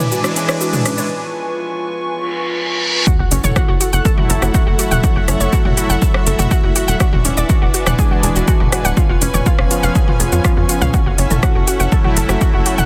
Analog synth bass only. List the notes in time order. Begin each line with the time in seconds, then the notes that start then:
3.19 F#1
3.31 F#1
3.44 F#1
3.69 F#1
3.93 F#1
4.30 F#1
4.42 F#1
4.67 F#1
4.91 E1
5.16 F#1
5.28 F#1
5.41 F#1
5.65 F#1
5.90 F#1
6.27 F#1
6.39 F#1
6.64 F#1
6.88 E1
7.13 E1
7.25 E1
7.37 E1
7.62 E1
7.87 E1
8.23 E1
8.36 E1
8.60 E1
8.85 D1
9.09 F1
9.22 F1
9.34 F1
9.59 F1
9.83 F1
10.20 F1
10.32 F2
10.57 F2
10.82 C#2
11.06 F#1
11.18 F#1
11.31 F#1
11.55 F#1
11.80 F#1
12.17 F#1
12.29 F#1
12.54 F#1
12.78 E1